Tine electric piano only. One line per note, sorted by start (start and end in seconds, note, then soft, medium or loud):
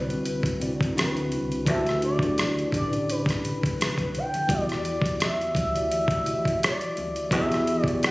0.00 0.08 D3 medium
0.00 0.09 C4 medium
0.00 0.10 E4 medium
0.00 0.10 F#4 medium
0.00 0.11 B4 medium
0.08 0.52 D3 medium
0.08 0.53 C4 medium
0.08 0.53 E4 soft
0.08 0.53 F#4 soft
0.08 0.54 B4 medium
0.59 0.93 D3 medium
0.59 0.96 C4 medium
0.59 0.95 E4 medium
0.59 0.96 F#4 medium
0.59 0.97 D5 medium
0.94 1.56 D3 medium
0.94 1.57 C4 medium
0.94 1.56 D4 medium
0.94 1.57 E4 medium
0.94 1.57 F#4 medium
1.65 2.11 D3 medium
1.65 2.11 D4 medium
1.65 2.12 E4 medium
1.65 2.12 G4 medium
1.65 2.12 A4 medium
1.65 2.13 B4 medium
2.21 2.65 D3 medium
2.21 2.65 D4 medium
2.21 2.65 E4 medium
2.21 2.66 G4 medium
2.21 2.66 A4 medium
2.21 2.66 D5 medium
2.72 3.92 D3 medium
2.72 3.92 D4 medium
2.72 3.93 E4 soft
2.72 3.93 G4 medium
2.72 3.93 A4 medium
2.72 3.94 B4 medium
4.47 5.52 E3 medium
4.47 5.52 E4 medium
4.47 5.53 F#4 medium
4.47 5.53 G4 medium
4.47 5.54 D5 medium
5.73 6.17 E3 medium
5.73 6.18 E4 medium
5.73 6.18 F#4 soft
5.73 6.19 G4 medium
5.77 6.19 D5 medium
6.24 7.16 E3 medium
6.24 7.16 E4 medium
6.24 7.16 F#4 soft
6.24 7.17 G4 medium
6.24 6.34 D#5 medium
6.35 7.21 E5 medium
7.30 7.76 E3 medium
7.30 7.77 E4 medium
7.30 7.77 F#4 medium
7.30 7.77 G4 medium
7.30 7.78 B4 medium
7.86 8.11 E3 medium
7.86 8.11 E4 medium
7.86 8.11 F#4 medium
7.86 8.11 G4 medium
7.86 8.11 D5 medium